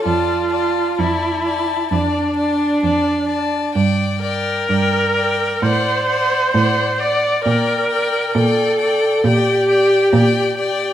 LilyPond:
<<
  \new Staff \with { instrumentName = "Violin" } { \time 4/4 \key d \minor \tempo 4 = 66 a''8 a''8 a''8 a''8 a''8 a''8 a''8 a''8 | g''8 g''8 g''8 g''8 fis''8 fis''8 fis''8 fis''8 | g''8 g''8 g''8 g''8 g''8 g''8 g''8 g''8 | }
  \new Staff \with { instrumentName = "Violin" } { \time 4/4 \key d \minor d''8 d''8 d''8 d''8 d''8 d''8 d''8 d''8 | d''8 d''8 d''8 d''8 d''8 d''8 d''8 d''8 | d''8 d''8 d''8 d''8 d''8 d''8 d''8 d''8 | }
  \new Staff \with { instrumentName = "Viola" } { \time 4/4 \key d \minor f'4 e'4 d'2 | r8 bes'4. c''4. d''8 | bes'4 a'4 g'2 | }
  \new Staff \with { instrumentName = "Cello" } { \clef bass \time 4/4 \key d \minor f,4 f,4 f,4 f,4 | g,4 g,4 a,4 a,4 | bes,4 bes,4 bes,4 bes,4 | }
>>